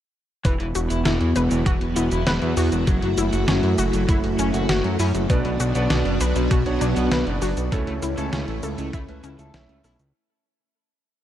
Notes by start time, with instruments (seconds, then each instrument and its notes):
0.45 analog synth bass E1, overdriven electric guitar E3, string machine B3 E4 F#4, synth arpeggio sound B4, kick, closed hi-hat, cabasa
0.60 analog synth bass E1, overdriven electric guitar E3, closed hi-hat
0.75 analog synth bass E1, synth arpeggio sound F#4, closed hi-hat, cabasa
0.90 analog synth bass E1, overdriven electric guitar E4, closed hi-hat, cabasa
1.05 analog synth bass E1, overdriven electric guitar E3, synth arpeggio sound E4, snare, closed hi-hat, cabasa
1.21 analog synth bass E2, overdriven electric guitar E3, closed hi-hat
1.36 analog synth bass E1, synth arpeggio sound B4, closed hi-hat, cabasa
1.51 analog synth bass E1, overdriven electric guitar E3, closed hi-hat, cabasa
1.66 analog synth bass E1, overdriven electric guitar E3, synth arpeggio sound F#4, kick, closed hi-hat, cabasa
1.81 analog synth bass E1, closed hi-hat
1.96 analog synth bass E1, overdriven electric guitar B3, synth arpeggio sound E4, closed hi-hat, cabasa
2.12 analog synth bass E1, overdriven electric guitar E4, closed hi-hat, cabasa
2.27 analog synth bass E1, synth arpeggio sound B4, snare, closed hi-hat, cabasa
2.42 analog synth bass E2, overdriven electric guitar E3, closed hi-hat
2.57 analog synth bass E2, overdriven electric guitar B3, synth arpeggio sound F#4, open hi-hat, cabasa
2.72 analog synth bass E1, closed hi-hat, cabasa
2.87 analog synth bass F#1, overdriven electric guitar F#3, string machine A3, synth arpeggio sound F#4, kick, closed hi-hat, cabasa
3.02 analog synth bass F#1, overdriven electric guitar F#3, closed hi-hat
3.18 analog synth bass F#1, synth arpeggio sound E4, closed hi-hat, cabasa
3.33 analog synth bass F#1, overdriven electric guitar F#4, closed hi-hat, cabasa
3.48 analog synth bass F#1, overdriven electric guitar F#3, synth arpeggio sound C#4, snare, closed hi-hat, cabasa
3.63 analog synth bass F#2, overdriven electric guitar F#3, closed hi-hat
3.78 analog synth bass F#1, synth arpeggio sound F#4, closed hi-hat, cabasa
3.93 analog synth bass F#1, overdriven electric guitar F#3, closed hi-hat, cabasa
4.08 analog synth bass F#1, overdriven electric guitar F#3, synth arpeggio sound E4, kick, closed hi-hat, cabasa
4.24 analog synth bass F#1, closed hi-hat
4.39 analog synth bass F#1, overdriven electric guitar C#4, synth arpeggio sound C#4, closed hi-hat, cabasa
4.54 analog synth bass F#1, overdriven electric guitar F#4, closed hi-hat, cabasa
4.69 analog synth bass F#1, synth arpeggio sound F#4, snare, closed hi-hat, cabasa
4.84 analog synth bass F#2, overdriven electric guitar F#3, closed hi-hat
4.99 analog synth bass F#2, overdriven electric guitar C#4, synth arpeggio sound E4, open hi-hat, cabasa
5.15 analog synth bass F#1, closed hi-hat, cabasa
5.30 analog synth bass B1, overdriven electric guitar B2, electric grand piano B3 D4 F#4 D5, string machine B3 D4 F#4, synth arpeggio sound B4, kick, closed hi-hat, cabasa
5.45 analog synth bass B1, overdriven electric guitar B2, closed hi-hat
5.60 analog synth bass B1, synth arpeggio sound F#4, closed hi-hat, cabasa
5.75 analog synth bass B1, overdriven electric guitar B3, electric grand piano B3 D4 F#4 D5, closed hi-hat, cabasa
5.90 analog synth bass B1, overdriven electric guitar B2, synth arpeggio sound D4, snare, closed hi-hat, cabasa
6.05 analog synth bass F#1, overdriven electric guitar B2, closed hi-hat
6.21 analog synth bass B1, electric grand piano B3 D4 F#4 D5, synth arpeggio sound B4, closed hi-hat, cabasa
6.36 analog synth bass B1, overdriven electric guitar B2, closed hi-hat, cabasa
6.51 analog synth bass B1, overdriven electric guitar B2, synth arpeggio sound F#4, kick, closed hi-hat, cabasa
6.66 analog synth bass B1, electric grand piano B3 D4 F#4 C#5, closed hi-hat
6.81 analog synth bass B1, overdriven electric guitar F#3, synth arpeggio sound D4, closed hi-hat, cabasa
6.96 analog synth bass B1, overdriven electric guitar B3, closed hi-hat, cabasa
7.11 analog synth bass B1, synth arpeggio sound B4, snare, closed hi-hat, cabasa
7.27 analog synth bass F#1, overdriven electric guitar B2, electric grand piano B3 D4 F#4 D5, closed hi-hat
7.42 analog synth bass F#1, overdriven electric guitar F#3, synth arpeggio sound F#4, open hi-hat, cabasa
7.57 analog synth bass B1, closed hi-hat, cabasa
7.72 analog synth bass C#2, electric grand piano A3 C#4 E4 C#5, overdriven electric guitar A3, string machine A3 C#4 E4, synth arpeggio sound A4, kick, closed hi-hat, cabasa
7.87 analog synth bass C#2, overdriven electric guitar A3, closed hi-hat
8.02 analog synth bass C#2, synth arpeggio sound E4, closed hi-hat, cabasa
8.17 analog synth bass C#2, electric grand piano A3 C#4 E4 C#5, overdriven electric guitar A4, closed hi-hat, cabasa
8.33 analog synth bass C#2, overdriven electric guitar A3, synth arpeggio sound C#4, snare, closed hi-hat, cabasa
8.48 analog synth bass A1, overdriven electric guitar A3, closed hi-hat
8.63 analog synth bass C#2, electric grand piano A3 C#4 E4 C#5, synth arpeggio sound A4, closed hi-hat, cabasa
8.78 analog synth bass C#2, overdriven electric guitar A3, closed hi-hat, cabasa
8.93 analog synth bass C#2, overdriven electric guitar A3, synth arpeggio sound E4, kick, closed hi-hat, cabasa
9.08 analog synth bass C#2, electric grand piano A3 C#4 E4 B4, closed hi-hat
9.24 analog synth bass C#2, synth arpeggio sound C#4, overdriven electric guitar E4, closed hi-hat, cabasa
9.39 analog synth bass C#2, electric grand piano A3 C#4 E4 E5, overdriven electric guitar A4, closed hi-hat, cabasa
9.54 analog synth bass B1, electric grand piano A3 C#4 E4 E5, synth arpeggio sound C#4, snare, closed hi-hat, cabasa
9.69 analog synth bass C#2, overdriven electric guitar A3, closed hi-hat
9.84 analog synth bass B1, electric grand piano A3 C#4 E4 E5, overdriven electric guitar E4, synth arpeggio sound A4, open hi-hat, cabasa
9.99 analog synth bass C#2, closed hi-hat, cabasa